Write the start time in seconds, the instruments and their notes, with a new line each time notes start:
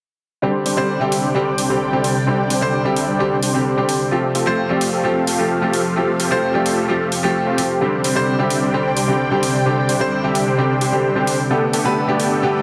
0.42 analog synth pad C3 C4 G4 D5 G5, grand piano D3 G3 C4 G4, supersaw synth G3 C4 D4 G4 C5
0.66 supersaw synth G3 C4 D4 G4 C5, open hi-hat
0.77 grand piano D3 G3 C4 C5
1.00 grand piano D3 G3 C4 G4, supersaw synth G3 C4 D4 G4 E5
1.12 open hi-hat
1.24 supersaw synth G3 C4 D4 G4 C5
1.34 grand piano D3 G3 C4 G4
1.58 supersaw synth G3 C4 D4 G4 C5, open hi-hat
1.69 grand piano D3 G3 C4 G4
1.92 grand piano D3 G3 C4 G4, supersaw synth G3 C4 D4 G4 C5
2.04 open hi-hat
2.27 grand piano D3 G3 C4 G4, supersaw synth G3 C4 D4 G4 C5
2.50 supersaw synth G3 C4 D4 G4 C5, open hi-hat
2.61 grand piano D3 G3 C4 C5
2.84 grand piano D3 G3 C4 G4, supersaw synth G3 C4 D4 G4 E5
2.96 open hi-hat
3.08 supersaw synth G3 C4 D4 G4 C5
3.19 grand piano D3 G3 C4 G4
3.43 supersaw synth G3 C4 D4 G4 C5, open hi-hat
3.54 grand piano D3 G3 C4 G4
3.77 grand piano D3 G3 C4 G4, supersaw synth G3 C4 D4 G4 C5
3.89 open hi-hat
4.11 grand piano F3 A3 C4 G4, analog synth pad F3 A4 F5, supersaw synth A3 C4 F4 G4 A4
4.35 supersaw synth A3 C4 F4 G4 A4, open hi-hat
4.46 grand piano F3 A3 C4 C5
4.69 grand piano F3 A3 C4 G4, supersaw synth A3 C4 F4 G4 D5
4.81 open hi-hat
4.93 supersaw synth A3 C4 F4 G4 A4
5.04 grand piano F3 A3 C4 G4
5.27 supersaw synth A3 C4 F4 G4 A4, open hi-hat
5.38 grand piano F3 A3 C4 G4
5.61 grand piano F3 A3 C4 G4, supersaw synth A3 C4 F4 G4 A4
5.73 open hi-hat
5.96 grand piano F3 A3 C4 G4, supersaw synth A3 C4 F4 G4 A4
6.20 supersaw synth A3 C4 F4 G4 A4, open hi-hat
6.31 grand piano F3 A3 C4 C5
6.54 grand piano F3 A3 C4 G4, supersaw synth A3 C4 F4 G4 D5
6.66 open hi-hat
6.77 supersaw synth A3 C4 F4 G4 A4
6.88 grand piano F3 A3 C4 G4
7.12 open hi-hat
7.23 grand piano F3 A3 C4 G4, supersaw synth A3 C4 F4 G4 A4
7.47 supersaw synth A3 C4 F4 G4 C5
7.58 grand piano F3 A3 C4 G4, open hi-hat
7.81 analog synth pad C3 D5 G5, grand piano D3 G3 C4 G4, supersaw synth G3 C4 D4 G4 C5
8.04 supersaw synth G3 C4 D4 G4 C5, open hi-hat
8.15 grand piano D3 G3 C4 C5
8.38 grand piano D3 G3 C4 G4, supersaw synth G3 C4 D4 G4 E5
8.50 open hi-hat
8.62 supersaw synth G3 C4 D4 G4 C5
8.73 grand piano D3 G3 C4 G4
8.97 supersaw synth G3 C4 D4 G4 C5, open hi-hat
9.08 grand piano D3 G3 C4 G4
9.31 grand piano D3 G3 C4 G4, supersaw synth G3 C4 D4 G4 C5
9.43 open hi-hat
9.65 grand piano D3 G3 C4 G4, supersaw synth G3 C4 D4 G4 C5
9.89 supersaw synth G3 C4 D4 G4 C5, open hi-hat
10.00 grand piano D3 G3 C4 C5
10.23 grand piano D3 G3 C4 G4, supersaw synth G3 C4 D4 G4 E5
10.35 open hi-hat
10.47 supersaw synth G3 C4 D4 G4 C5
10.58 grand piano D3 G3 C4 G4
10.81 supersaw synth G3 C4 D4 G4 C5, open hi-hat
10.92 grand piano D3 G3 C4 G4
11.15 grand piano D3 G3 C4 G4, supersaw synth G3 C4 D4 G4 C5
11.27 open hi-hat
11.50 grand piano D3 A3 B3 G4, analog synth pad G3 D4 A4 B4 G5, supersaw synth A3 B3 D4 G4 A4
11.73 supersaw synth A3 B3 D4 G4 A4, open hi-hat
11.84 grand piano D3 A3 B3 B4
12.07 grand piano D3 A3 B3 G4, supersaw synth A3 B3 D4 G4 D5
12.20 open hi-hat
12.31 supersaw synth A3 B3 D4 G4 A4
12.42 grand piano D3 A3 B3 G4